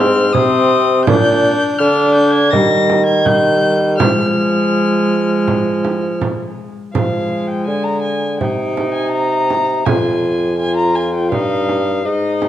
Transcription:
Already playing: bassoon G#2, viola C4, violin F6
0.33 bassoon C3, viola C4, violin D#6, frame drum
1.05 bassoon A#2, viola D4, violin G6, frame drum
1.79 bassoon D3, viola D4, violin F6
2.15 violin G6
2.33 violin G#6
2.51 bassoon D#3, viola G3, violin A#6, frame drum
2.90 frame drum
3.06 violin G#6
3.25 viola G3, violin G6, frame drum
3.98 bassoon F3, viola G#3, violin F6, frame drum
5.48 frame drum
5.85 frame drum
6.21 frame drum
6.94 bassoon F3, viola G#3, violin F5, frame drum
7.48 violin G5
7.67 bassoon D3, violin G#5
7.84 violin A#5
8.02 violin G#5
8.40 bassoon C3, viola D#4, violin G5, frame drum
8.77 frame drum
8.94 violin G#5
9.12 violin A#5
9.50 frame drum
9.85 bassoon F2, viola F4, violin G#5, frame drum
10.58 viola F4, violin G#5
10.77 violin A#5
10.95 violin G#5
11.14 violin G5
11.32 bassoon G2, viola D#4, violin F5, frame drum
11.69 frame drum
12.05 bassoon G#2, viola D#4, violin D#5
12.42 frame drum

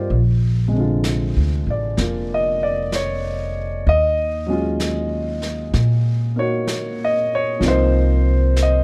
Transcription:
Already playing: grand piano A#3 C4 D#4 F4 G4 A#4 C5 D5 D#5
0.10 upright bass A#1, brush sweep
0.68 grand piano C3 G#3
0.75 grand piano D3 F4
1.04 brush sweep, snare, hi-hat pedal
1.37 upright bass D2
1.66 upright bass A1, grand piano D5
1.97 upright bass F1, grand piano A#3 F4, brush sweep, snare
2.34 grand piano D#5
2.63 grand piano D5
2.92 grand piano C#5, brush sweep, snare, hi-hat pedal
3.86 upright bass D#2, grand piano D#5, brush sweep
4.46 grand piano F#3 G#3 C#4
4.52 grand piano F4
4.80 brush sweep, snare, hi-hat pedal
5.42 snare
5.73 upright bass A#2, brush sweep, snare
6.36 grand piano A#3 D#4 F#4 C#5
6.67 brush sweep, snare, hi-hat pedal
7.04 grand piano D#5
7.35 grand piano C#5
7.60 upright bass C2, grand piano F3 A#3 C4, brush sweep, snare
7.65 grand piano D#4 C5
8.56 brush sweep, snare, hi-hat pedal
8.62 grand piano D#5

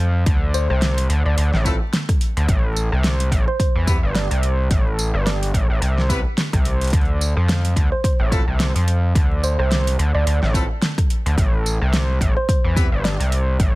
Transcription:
Already playing: analog synth bass F2
0.26 analog synth bass D2, kick, closed hi-hat
0.54 synth pluck C5, tambourine
0.70 analog synth bass C2, synth pluck C5, cross-stick
0.82 snare, closed hi-hat
0.98 closed hi-hat
1.10 analog synth bass D2, closed hi-hat
1.26 analog synth bass D2, synth pluck D5
1.38 analog synth bass D2, closed hi-hat
1.53 analog synth bass A1, snare
1.65 horn section A3 C4 E4 F4 A4, kick, closed hi-hat, tambourine
1.93 cross-stick, snare, closed hi-hat
2.09 kick, cross-stick, closed hi-hat
2.21 closed hi-hat
2.37 analog synth bass D2, closed hi-hat
2.48 analog synth bass A1, kick, closed hi-hat
2.77 tambourine
2.92 analog synth bass C2, cross-stick
3.04 snare, closed hi-hat
3.20 closed hi-hat
3.32 analog synth bass A1, kick, closed hi-hat
3.48 synth pluck C5
3.60 synth pluck C5, kick, closed hi-hat
3.76 analog synth bass E2
3.87 horn section B3 C4 E4 G4 B4, kick, closed hi-hat, tambourine
4.03 analog synth bass G1
4.15 synth pluck D5, snare, closed hi-hat
4.31 analog synth bass C2, closed hi-hat
4.43 closed hi-hat
4.71 analog synth bass A1, kick, closed hi-hat
4.99 tambourine
5.14 analog synth bass G1, cross-stick
5.26 synth pluck D5, snare, closed hi-hat
5.43 closed hi-hat
5.54 analog synth bass A1, kick, closed hi-hat
5.70 analog synth bass A1
5.82 analog synth bass C2, closed hi-hat
5.98 snare
6.10 horn section B3 C4 E4 G4 B4, kick, closed hi-hat, tambourine
6.38 cross-stick, snare, closed hi-hat
6.53 analog synth bass C2, kick, cross-stick, closed hi-hat
6.65 closed hi-hat
6.81 closed hi-hat
6.84 closed hi-hat
6.87 closed hi-hat
6.90 analog synth bass D2, kick, closed hi-hat
6.93 closed hi-hat
7.05 closed hi-hat
7.21 tambourine
7.37 analog synth bass F2, cross-stick
7.49 snare, closed hi-hat
7.65 closed hi-hat
7.76 analog synth bass D2, kick, closed hi-hat
7.92 synth pluck C5
8.04 synth pluck C5, kick, closed hi-hat
8.20 analog synth bass A1
8.32 horn section A3 C4 E4 F4 A4, kick, closed hi-hat, tambourine
8.48 analog synth bass C2
8.60 snare, closed hi-hat
8.75 analog synth bass F2, closed hi-hat
8.88 closed hi-hat
9.15 analog synth bass D2, kick, closed hi-hat
9.44 synth pluck C5, tambourine
9.59 analog synth bass C2, synth pluck C5, cross-stick
9.72 snare, closed hi-hat
9.87 closed hi-hat
9.99 analog synth bass D2, closed hi-hat
10.15 analog synth bass D2, synth pluck D5
10.27 analog synth bass D2, closed hi-hat
10.43 analog synth bass A1, snare
10.54 horn section A3 C4 E4 F4 A4, kick, closed hi-hat, tambourine
10.82 cross-stick, snare, closed hi-hat
10.98 kick, cross-stick, closed hi-hat
11.10 closed hi-hat
11.26 analog synth bass D2, closed hi-hat
11.38 analog synth bass A1, kick, closed hi-hat
11.66 tambourine
11.82 analog synth bass C2, cross-stick
11.94 snare, closed hi-hat
12.21 analog synth bass A1, kick, closed hi-hat
12.37 synth pluck C5
12.49 synth pluck C5, kick, closed hi-hat
12.64 analog synth bass E2
12.76 horn section B3 C4 E4 G4 B4, kick, closed hi-hat, tambourine
12.92 analog synth bass G1
13.04 synth pluck D5, snare, closed hi-hat
13.20 analog synth bass C2, closed hi-hat
13.32 closed hi-hat
13.60 analog synth bass A1, kick, closed hi-hat

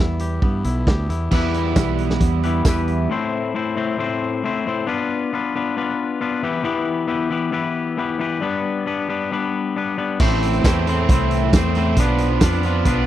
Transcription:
Already playing: fingered electric bass E2, clean electric guitar E3 B3 G4, overdriven electric guitar G3 B3 E4
0.00 clean electric guitar E4
0.19 clean electric guitar G4, closed hi-hat
0.42 fingered electric bass G2, clean electric guitar B3, kick
0.64 fingered electric bass B1, clean electric guitar E4, closed hi-hat
0.87 fingered electric bass D2, clean electric guitar G4, kick, snare
1.09 fingered electric bass E2, clean electric guitar E4, snare, closed hi-hat
1.31 fingered electric bass E2, clean electric guitar E3 B3 E4 G4 B4, overdriven electric guitar G3, kick, crash
1.54 closed hi-hat
1.76 fingered electric bass B1, kick, snare, closed hi-hat, tambourine
1.98 closed hi-hat
2.10 snare
2.21 fingered electric bass E2, kick, closed hi-hat
2.43 clean electric guitar E3 B3 E4 G4 B4, closed hi-hat
2.65 fingered electric bass E2, clean electric guitar E3 B3 E4 G4, kick, snare, closed hi-hat, tambourine
2.70 clean electric guitar B4
2.77 closed hi-hat
2.88 closed hi-hat
3.10 clean electric guitar A2 A3 C4 E4 C5
3.54 clean electric guitar A2 A3 C4 E4 C5
3.76 clean electric guitar A2 A3 C4 E4 C5
3.98 clean electric guitar A2 A3 C4 E4 C5
4.44 clean electric guitar A2 A3 C4 E4 C5
4.66 clean electric guitar A2 A3 C4 E4 C5
4.87 clean electric guitar B3 D4 F4 B4
5.33 clean electric guitar B3 D4 F4 B4
5.56 clean electric guitar B3 D4 F4 B4
5.77 clean electric guitar B3 D4 F4 B4
6.21 clean electric guitar B3 D4 F4 B4
6.43 clean electric guitar E3 B3 E4 G4 B4
6.63 clean electric guitar E3 B3 E4 G4 B4
7.07 clean electric guitar E3 B3 E4 G4 B4
7.30 clean electric guitar E3 B3 E4 G4 B4
7.52 clean electric guitar E3 B3 E4 G4 B4
7.97 clean electric guitar E3 B3 E4 G4 B4
8.19 clean electric guitar E3 B3 E4 G4 B4
8.41 clean electric guitar G3 B3 D4 B4
8.86 clean electric guitar G3 B3 D4 B4
9.08 clean electric guitar G3 B3 D4 B4
9.31 clean electric guitar G3 B3 D4 B4
9.76 clean electric guitar G3 B3 D4 B4
9.98 clean electric guitar G3 B3 D4 B4
10.20 fingered electric bass A1, clean electric guitar A2 A3 C4 E4 C5, overdriven electric guitar E3, kick, crash
10.42 closed hi-hat
10.53 closed hi-hat
10.64 fingered electric bass E2, clean electric guitar A2 A3 C4 E4 C5, overdriven electric guitar E3, kick, snare, closed hi-hat, tambourine
10.86 clean electric guitar A2 A3 C4 E4 C5, overdriven electric guitar E3, closed hi-hat
11.08 fingered electric bass C2, clean electric guitar A2 A3 C4 E4 C5, overdriven electric guitar E3, kick, closed hi-hat
11.31 closed hi-hat
11.53 fingered electric bass E2, clean electric guitar A2 A3 C4 E4 C5, overdriven electric guitar E3, kick, snare, closed hi-hat, tambourine
11.75 clean electric guitar A2 A3 C4 E4 C5, overdriven electric guitar E3, snare, closed hi-hat
11.96 fingered electric bass B1, overdriven electric guitar F3, clean electric guitar B3 D4 F4, kick, closed hi-hat
12.01 clean electric guitar B4
12.18 closed hi-hat
12.40 fingered electric bass F2, overdriven electric guitar F3, clean electric guitar B3 D4 F4 B4, kick, snare, closed hi-hat, tambourine
12.52 closed hi-hat
12.63 overdriven electric guitar F3, clean electric guitar B3 D4 F4 B4, closed hi-hat
12.85 fingered electric bass B1, overdriven electric guitar F3, clean electric guitar B3 D4 F4 B4, kick, closed hi-hat

